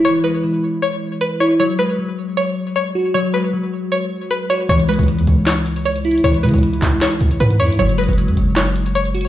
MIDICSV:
0, 0, Header, 1, 5, 480
1, 0, Start_track
1, 0, Key_signature, 4, "minor"
1, 0, Tempo, 387097
1, 58, Time_signature, 4, 2, 24, 8
1, 11510, End_track
2, 0, Start_track
2, 0, Title_t, "Synth pluck"
2, 0, Program_c, 0, 84
2, 59, Note_on_c, 0, 73, 112
2, 265, Note_off_c, 0, 73, 0
2, 294, Note_on_c, 0, 71, 75
2, 973, Note_off_c, 0, 71, 0
2, 1020, Note_on_c, 0, 73, 77
2, 1471, Note_off_c, 0, 73, 0
2, 1500, Note_on_c, 0, 71, 78
2, 1706, Note_off_c, 0, 71, 0
2, 1740, Note_on_c, 0, 73, 88
2, 1946, Note_off_c, 0, 73, 0
2, 1979, Note_on_c, 0, 73, 105
2, 2185, Note_off_c, 0, 73, 0
2, 2216, Note_on_c, 0, 71, 76
2, 2894, Note_off_c, 0, 71, 0
2, 2940, Note_on_c, 0, 73, 86
2, 3391, Note_off_c, 0, 73, 0
2, 3418, Note_on_c, 0, 73, 83
2, 3870, Note_off_c, 0, 73, 0
2, 3897, Note_on_c, 0, 73, 106
2, 4104, Note_off_c, 0, 73, 0
2, 4138, Note_on_c, 0, 71, 74
2, 4815, Note_off_c, 0, 71, 0
2, 4858, Note_on_c, 0, 73, 83
2, 5309, Note_off_c, 0, 73, 0
2, 5339, Note_on_c, 0, 71, 74
2, 5545, Note_off_c, 0, 71, 0
2, 5578, Note_on_c, 0, 73, 97
2, 5784, Note_off_c, 0, 73, 0
2, 5819, Note_on_c, 0, 73, 101
2, 6025, Note_off_c, 0, 73, 0
2, 6059, Note_on_c, 0, 71, 84
2, 6736, Note_off_c, 0, 71, 0
2, 6777, Note_on_c, 0, 73, 81
2, 7229, Note_off_c, 0, 73, 0
2, 7259, Note_on_c, 0, 73, 80
2, 7710, Note_off_c, 0, 73, 0
2, 7737, Note_on_c, 0, 73, 109
2, 7944, Note_off_c, 0, 73, 0
2, 7974, Note_on_c, 0, 71, 76
2, 8653, Note_off_c, 0, 71, 0
2, 8700, Note_on_c, 0, 73, 77
2, 9151, Note_off_c, 0, 73, 0
2, 9178, Note_on_c, 0, 71, 82
2, 9385, Note_off_c, 0, 71, 0
2, 9420, Note_on_c, 0, 73, 86
2, 9626, Note_off_c, 0, 73, 0
2, 9659, Note_on_c, 0, 73, 100
2, 9866, Note_off_c, 0, 73, 0
2, 9896, Note_on_c, 0, 71, 80
2, 10574, Note_off_c, 0, 71, 0
2, 10620, Note_on_c, 0, 73, 86
2, 11071, Note_off_c, 0, 73, 0
2, 11100, Note_on_c, 0, 73, 85
2, 11510, Note_off_c, 0, 73, 0
2, 11510, End_track
3, 0, Start_track
3, 0, Title_t, "Synth keys"
3, 0, Program_c, 1, 88
3, 0, Control_c, 1, 64, 127
3, 0, Note_on_c, 1, 52, 75
3, 0, Note_on_c, 1, 56, 87
3, 0, Note_on_c, 1, 64, 92
3, 58, Note_off_c, 1, 52, 0
3, 58, Note_on_c, 1, 52, 89
3, 299, Note_off_c, 1, 56, 0
3, 299, Note_on_c, 1, 56, 77
3, 523, Note_off_c, 1, 52, 0
3, 538, Note_on_c, 1, 52, 76
3, 1018, Note_off_c, 1, 64, 0
3, 1499, Note_off_c, 1, 56, 0
3, 1738, Note_off_c, 1, 52, 0
3, 1739, Note_on_c, 1, 64, 84
3, 1979, Note_off_c, 1, 64, 0
3, 1980, Note_on_c, 1, 54, 96
3, 1993, Control_c, 1, 64, 0
3, 2195, Control_c, 1, 64, 127
3, 2219, Note_on_c, 1, 56, 79
3, 2444, Note_off_c, 1, 54, 0
3, 2459, Note_on_c, 1, 54, 83
3, 3419, Note_off_c, 1, 56, 0
3, 3659, Note_off_c, 1, 54, 0
3, 3659, Note_on_c, 1, 66, 87
3, 3899, Note_on_c, 1, 54, 88
3, 4140, Note_on_c, 1, 56, 72
3, 4365, Note_off_c, 1, 54, 0
3, 4380, Note_on_c, 1, 54, 79
3, 4859, Note_off_c, 1, 66, 0
3, 5339, Note_off_c, 1, 56, 0
3, 5578, Note_on_c, 1, 66, 84
3, 5579, Note_off_c, 1, 54, 0
3, 5818, Note_off_c, 1, 66, 0
3, 5819, Note_on_c, 1, 52, 89
3, 5836, Control_c, 1, 64, 0
3, 6020, Control_c, 1, 64, 127
3, 6059, Note_on_c, 1, 56, 84
3, 6284, Note_off_c, 1, 52, 0
3, 6299, Note_on_c, 1, 52, 77
3, 7259, Note_off_c, 1, 56, 0
3, 7499, Note_off_c, 1, 52, 0
3, 7499, Note_on_c, 1, 64, 95
3, 7738, Note_on_c, 1, 52, 89
3, 7978, Note_on_c, 1, 56, 80
3, 8204, Note_off_c, 1, 52, 0
3, 8219, Note_on_c, 1, 52, 78
3, 8699, Note_off_c, 1, 64, 0
3, 9178, Note_off_c, 1, 56, 0
3, 9419, Note_off_c, 1, 52, 0
3, 9420, Note_on_c, 1, 64, 85
3, 9659, Note_off_c, 1, 64, 0
3, 9659, Note_on_c, 1, 54, 94
3, 9676, Control_c, 1, 64, 0
3, 9855, Control_c, 1, 64, 127
3, 9899, Note_on_c, 1, 56, 82
3, 10125, Note_off_c, 1, 54, 0
3, 10139, Note_on_c, 1, 54, 85
3, 11099, Note_off_c, 1, 56, 0
3, 11338, Note_on_c, 1, 66, 88
3, 11339, Note_off_c, 1, 54, 0
3, 11510, Note_off_c, 1, 66, 0
3, 11510, End_track
4, 0, Start_track
4, 0, Title_t, "808-style bass"
4, 0, Program_c, 2, 38
4, 5818, Note_on_c, 2, 37, 106
4, 6171, Note_off_c, 2, 37, 0
4, 6184, Note_on_c, 2, 37, 114
4, 6425, Note_on_c, 2, 40, 96
4, 6443, Note_off_c, 2, 37, 0
4, 6533, Note_off_c, 2, 40, 0
4, 6538, Note_on_c, 2, 37, 104
4, 7690, Note_off_c, 2, 37, 0
4, 7738, Note_on_c, 2, 37, 104
4, 7978, Note_on_c, 2, 49, 100
4, 7997, Note_off_c, 2, 37, 0
4, 8099, Note_off_c, 2, 49, 0
4, 8106, Note_on_c, 2, 37, 112
4, 8445, Note_off_c, 2, 37, 0
4, 8458, Note_on_c, 2, 37, 106
4, 8689, Note_off_c, 2, 37, 0
4, 8939, Note_on_c, 2, 37, 107
4, 9169, Note_off_c, 2, 37, 0
4, 9179, Note_on_c, 2, 44, 108
4, 9419, Note_on_c, 2, 40, 98
4, 9438, Note_off_c, 2, 44, 0
4, 9546, Note_on_c, 2, 44, 99
4, 9564, Note_off_c, 2, 40, 0
4, 9653, Note_off_c, 2, 44, 0
4, 9660, Note_on_c, 2, 30, 106
4, 10012, Note_off_c, 2, 30, 0
4, 10027, Note_on_c, 2, 30, 117
4, 10266, Note_on_c, 2, 42, 96
4, 10285, Note_off_c, 2, 30, 0
4, 10373, Note_off_c, 2, 42, 0
4, 10379, Note_on_c, 2, 30, 104
4, 11510, Note_off_c, 2, 30, 0
4, 11510, End_track
5, 0, Start_track
5, 0, Title_t, "Drums"
5, 5819, Note_on_c, 9, 42, 79
5, 5943, Note_off_c, 9, 42, 0
5, 5945, Note_on_c, 9, 42, 63
5, 6058, Note_off_c, 9, 42, 0
5, 6058, Note_on_c, 9, 42, 83
5, 6122, Note_off_c, 9, 42, 0
5, 6122, Note_on_c, 9, 42, 73
5, 6186, Note_off_c, 9, 42, 0
5, 6186, Note_on_c, 9, 42, 62
5, 6242, Note_off_c, 9, 42, 0
5, 6242, Note_on_c, 9, 42, 50
5, 6302, Note_off_c, 9, 42, 0
5, 6302, Note_on_c, 9, 42, 88
5, 6426, Note_off_c, 9, 42, 0
5, 6430, Note_on_c, 9, 42, 56
5, 6538, Note_off_c, 9, 42, 0
5, 6538, Note_on_c, 9, 42, 76
5, 6662, Note_off_c, 9, 42, 0
5, 6777, Note_on_c, 9, 38, 119
5, 6779, Note_on_c, 9, 39, 94
5, 6780, Note_on_c, 9, 42, 84
5, 6901, Note_off_c, 9, 38, 0
5, 6903, Note_off_c, 9, 39, 0
5, 6903, Note_off_c, 9, 42, 0
5, 6903, Note_on_c, 9, 42, 61
5, 7017, Note_off_c, 9, 42, 0
5, 7017, Note_on_c, 9, 42, 84
5, 7141, Note_off_c, 9, 42, 0
5, 7143, Note_on_c, 9, 42, 52
5, 7259, Note_off_c, 9, 42, 0
5, 7259, Note_on_c, 9, 42, 84
5, 7383, Note_off_c, 9, 42, 0
5, 7385, Note_on_c, 9, 42, 58
5, 7499, Note_off_c, 9, 42, 0
5, 7499, Note_on_c, 9, 42, 73
5, 7578, Note_off_c, 9, 42, 0
5, 7578, Note_on_c, 9, 42, 72
5, 7658, Note_off_c, 9, 42, 0
5, 7658, Note_on_c, 9, 42, 67
5, 7739, Note_off_c, 9, 42, 0
5, 7739, Note_on_c, 9, 42, 77
5, 7863, Note_off_c, 9, 42, 0
5, 7866, Note_on_c, 9, 42, 61
5, 7979, Note_off_c, 9, 42, 0
5, 7979, Note_on_c, 9, 42, 86
5, 8043, Note_off_c, 9, 42, 0
5, 8043, Note_on_c, 9, 42, 73
5, 8106, Note_off_c, 9, 42, 0
5, 8106, Note_on_c, 9, 42, 63
5, 8162, Note_off_c, 9, 42, 0
5, 8162, Note_on_c, 9, 42, 48
5, 8222, Note_off_c, 9, 42, 0
5, 8222, Note_on_c, 9, 42, 88
5, 8346, Note_off_c, 9, 42, 0
5, 8350, Note_on_c, 9, 42, 58
5, 8459, Note_off_c, 9, 42, 0
5, 8459, Note_on_c, 9, 42, 78
5, 8460, Note_on_c, 9, 38, 94
5, 8461, Note_on_c, 9, 39, 80
5, 8583, Note_off_c, 9, 42, 0
5, 8584, Note_off_c, 9, 38, 0
5, 8585, Note_off_c, 9, 39, 0
5, 8698, Note_on_c, 9, 38, 117
5, 8699, Note_on_c, 9, 39, 97
5, 8700, Note_on_c, 9, 42, 89
5, 8822, Note_off_c, 9, 38, 0
5, 8822, Note_off_c, 9, 42, 0
5, 8822, Note_on_c, 9, 42, 62
5, 8823, Note_off_c, 9, 39, 0
5, 8937, Note_off_c, 9, 42, 0
5, 8937, Note_on_c, 9, 42, 85
5, 9061, Note_off_c, 9, 42, 0
5, 9063, Note_on_c, 9, 42, 55
5, 9179, Note_off_c, 9, 42, 0
5, 9179, Note_on_c, 9, 42, 88
5, 9303, Note_off_c, 9, 42, 0
5, 9305, Note_on_c, 9, 42, 59
5, 9419, Note_off_c, 9, 42, 0
5, 9419, Note_on_c, 9, 42, 71
5, 9498, Note_off_c, 9, 42, 0
5, 9498, Note_on_c, 9, 42, 72
5, 9579, Note_off_c, 9, 42, 0
5, 9579, Note_on_c, 9, 42, 71
5, 9659, Note_off_c, 9, 42, 0
5, 9659, Note_on_c, 9, 42, 78
5, 9783, Note_off_c, 9, 42, 0
5, 9785, Note_on_c, 9, 42, 63
5, 9899, Note_off_c, 9, 42, 0
5, 9899, Note_on_c, 9, 42, 87
5, 9963, Note_off_c, 9, 42, 0
5, 9963, Note_on_c, 9, 42, 73
5, 10027, Note_off_c, 9, 42, 0
5, 10027, Note_on_c, 9, 42, 62
5, 10083, Note_off_c, 9, 42, 0
5, 10083, Note_on_c, 9, 42, 50
5, 10143, Note_off_c, 9, 42, 0
5, 10143, Note_on_c, 9, 42, 87
5, 10267, Note_off_c, 9, 42, 0
5, 10271, Note_on_c, 9, 42, 57
5, 10379, Note_off_c, 9, 42, 0
5, 10379, Note_on_c, 9, 42, 77
5, 10503, Note_off_c, 9, 42, 0
5, 10619, Note_on_c, 9, 38, 117
5, 10620, Note_on_c, 9, 39, 96
5, 10621, Note_on_c, 9, 42, 88
5, 10743, Note_off_c, 9, 38, 0
5, 10743, Note_off_c, 9, 42, 0
5, 10743, Note_on_c, 9, 42, 58
5, 10744, Note_off_c, 9, 39, 0
5, 10858, Note_off_c, 9, 42, 0
5, 10858, Note_on_c, 9, 42, 85
5, 10982, Note_off_c, 9, 42, 0
5, 10984, Note_on_c, 9, 42, 54
5, 11100, Note_off_c, 9, 42, 0
5, 11100, Note_on_c, 9, 42, 84
5, 11224, Note_off_c, 9, 42, 0
5, 11226, Note_on_c, 9, 42, 59
5, 11339, Note_off_c, 9, 42, 0
5, 11339, Note_on_c, 9, 42, 70
5, 11419, Note_off_c, 9, 42, 0
5, 11419, Note_on_c, 9, 42, 71
5, 11510, Note_off_c, 9, 42, 0
5, 11510, End_track
0, 0, End_of_file